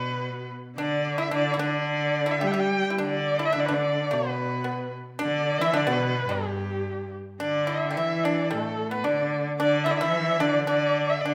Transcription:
Already playing: B2 B3 B4
0.77 D3 D4 D5
1.18 E4 E5
1.31 D3 D4 D5
1.54 E4
1.59 D3 D4 D5
2.26 E4
2.31 E5
2.41 G3 G4
2.47 G5
2.51 G4 E5
2.60 G5
2.90 E4
2.98 D3 D4
3.06 D5
3.39 E4
3.45 E5
3.53 D4
3.57 D3 D5
3.66 D4 B4
3.71 D3 D5
4.11 B2 B3 B4
4.64 B3
5.19 D3 D4 D5
5.59 E3 E4 E5
5.73 D3 D4 D5
5.87 B2 B3
5.92 B4
6.28 G2 G3 G4
7.40 D3 D4 D5
7.67 E4 E5
7.91 G4
7.97 E3 E4 E5
8.19 E5
8.24 D4 D5
8.51 A2 A3 A4
8.91 B3 B4
9.04 D3 D4 D5
9.59 D3 D4 D5
9.84 E4 E5
9.91 D5
9.97 E4 E5
10.02 E3
10.40 D3 D4 D5
10.66 D3 D4 D5
11.10 E5
11.21 D5
11.25 D3 D4

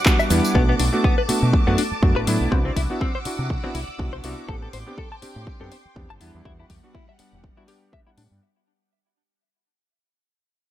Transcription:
Already playing: G3 F#5 D6
0.06 G3 B3 D4 F#4, kick, clap, tambourine, shaker
0.19 E5, tambourine, shaker
0.30 E2 G3 B3 D4 E4, open hi-hat, shaker
0.44 tambourine, shaker
0.54 B1 A3 B3 D4 F#4 A5, kick
0.69 B3
0.79 B1 D4, open hi-hat
0.93 A3 B3 D4 F#4
1.04 B3, kick
1.18 B4
1.28 A3 B3 D4 F#4, muted fingered electric bass stroke, open hi-hat
1.43 B2
1.53 muted fingered electric bass stroke, kick
1.67 F#2 A3 B3 D4 F#4
1.78 D4, open hi-hat
1.92 muted fingered electric bass stroke
2.02 F#2 A3 B3 D4 F#4, kick
2.16 A1 B4
2.27 A2 F#3 A3 B3 D4 E4, open hi-hat
2.41 B1
2.52 C2 C4 D4 E4 F#4 B4 F#5 D6 E6, kick
2.65 C4
2.76 C2 E4, kick, open hi-hat
2.90 B3 D4 E4 F#4
3.01 C4, kick
3.15 C5
3.25 D4 E4 F#4, muted fingered electric bass stroke, open hi-hat
3.39 C3
3.50 kick
3.63 B3 C4 D4 E4 F#4, muted fingered electric bass stroke
3.75 C2 E4, open hi-hat
3.88 muted fingered electric bass stroke
3.98 C2 B3 D4 E4 F#4, kick
4.13 C2 C5
4.24 C2 G3 B3 D4 E4 F#4, open hi-hat
4.48 A1 B3 C4 D4 G4 A4 G5 C6, kick
4.62 A4
4.73 A1 C5, open hi-hat
4.86 B3 C4 D4 G4
4.98 A4, kick
5.12 A5
5.22 C4 D4 G4, muted fingered electric bass stroke, open hi-hat
5.36 A2
5.47 muted fingered electric bass stroke, kick
5.60 F#2 B3 C4 D4 G4 A4
5.72 C5, open hi-hat
5.85 muted fingered electric bass stroke
5.96 E2 B3 C4 D4 G4, kick
6.10 G1 A5
6.20 E2 G3 B3 D4 E4 F#5, open hi-hat
6.35 E2
6.45 E2 G3 B3 D4 E4 F#4, kick
6.60 E4
6.70 E2 G4, kick, open hi-hat
6.83 G3 B3 D4 F#4
6.95 E4, kick
7.09 E5
7.18 G3 B3 D4 F#5, muted fingered electric bass stroke, open hi-hat
7.33 E1
7.44 kick
7.57 G3 B3 D4 E4 F#4
7.67 G3 B3 D4 G4, open hi-hat
7.93 E5, kick
8.06 G3 B3 D4 E4 F#5
8.18 A2 D4, open hi-hat
8.31 G2

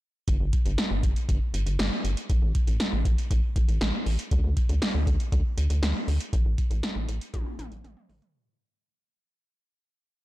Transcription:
0.28 G1, kick, closed hi-hat
0.40 G1
0.53 kick, closed hi-hat
0.66 G1, closed hi-hat
0.78 snare, closed hi-hat
0.91 G1
1.03 G1, kick, closed hi-hat
1.16 closed hi-hat
1.29 G1, kick, closed hi-hat
1.54 G1, closed hi-hat
1.66 G1, closed hi-hat
1.79 G1, snare, closed hi-hat
2.04 G1, closed hi-hat
2.17 closed hi-hat
2.30 A1, kick, closed hi-hat
2.42 A1
2.55 kick, closed hi-hat
2.67 A1, closed hi-hat
2.80 snare, closed hi-hat
2.93 A1
3.05 A1, kick, closed hi-hat
3.18 closed hi-hat
3.31 A1, kick, closed hi-hat
3.56 A1, kick, closed hi-hat
3.68 A1, closed hi-hat
3.81 A1, snare, closed hi-hat
4.06 A1, open hi-hat
4.19 closed hi-hat
4.31 D2, kick, closed hi-hat
4.44 D2
4.57 kick, closed hi-hat
4.69 D2, closed hi-hat
4.82 snare, closed hi-hat
4.95 D2
5.07 D2, kick, closed hi-hat
5.20 closed hi-hat
5.32 D2, kick, closed hi-hat
5.58 D2, closed hi-hat
5.70 D2, closed hi-hat
5.82 D2, snare, closed hi-hat
6.08 D2, open hi-hat
6.21 closed hi-hat
6.33 A1, kick, closed hi-hat
6.45 A1
6.58 kick, closed hi-hat
6.71 A1, closed hi-hat
6.83 snare, closed hi-hat
6.96 A1
7.08 A1, closed hi-hat
7.21 closed hi-hat
7.34 A1, kick, closed hi-hat, high tom
7.59 A1, closed hi-hat, mid tom
7.72 A1, closed hi-hat
7.84 A1, closed hi-hat, mid tom
7.97 mid tom
8.09 A1, floor tom, open hi-hat
8.22 closed hi-hat, floor tom

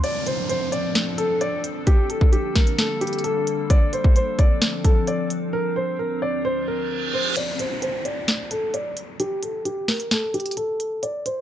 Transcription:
0.04 F3 C4 D4 A4 D5, closed hi-hat, downlifter
0.27 C5, closed hi-hat
0.49 C5, closed hi-hat
0.72 D5, closed hi-hat
0.95 snare, closed hi-hat
1.18 A4, closed hi-hat
1.41 D5, closed hi-hat
1.64 closed hi-hat
1.87 D3 G3 A#3 G4, kick, closed hi-hat
2.10 A4, closed hi-hat
2.21 kick
2.32 G4, closed hi-hat
2.55 A#4, kick, snare, closed hi-hat
2.67 closed hi-hat
2.78 A4, snare, closed hi-hat
3.01 G4, closed hi-hat
3.07 closed hi-hat
3.13 closed hi-hat
3.19 closed hi-hat
3.24 A4, closed hi-hat
3.47 closed hi-hat
3.70 F3 C4 D5, kick, closed hi-hat
3.93 C5, closed hi-hat
4.04 kick
4.16 C5, closed hi-hat
4.39 D5, kick, closed hi-hat
4.62 snare, closed hi-hat
4.85 A4, kick, closed hi-hat
5.07 D5, closed hi-hat
5.30 closed hi-hat
5.53 D2 C4 A#4
5.76 C5
5.99 A#4
6.22 D5
6.45 C5, reverse cymbal
6.68 A#4
7.13 C5
7.36 D5, closed hi-hat, crash, downlifter
7.59 C5, closed hi-hat
7.82 C5, closed hi-hat
8.05 D5, closed hi-hat
8.28 snare, closed hi-hat
8.51 A4, closed hi-hat
8.74 D5, closed hi-hat
8.97 closed hi-hat
9.20 G4, closed hi-hat
9.43 A4, closed hi-hat
9.65 G4, closed hi-hat
9.88 A#4, snare, closed hi-hat, open hi-hat
10.00 closed hi-hat
10.11 A4, snare, closed hi-hat
10.34 G4, closed hi-hat
10.40 closed hi-hat
10.46 closed hi-hat
10.51 closed hi-hat
10.57 A4, closed hi-hat
10.80 closed hi-hat
11.03 D5, closed hi-hat
11.26 C5, closed hi-hat

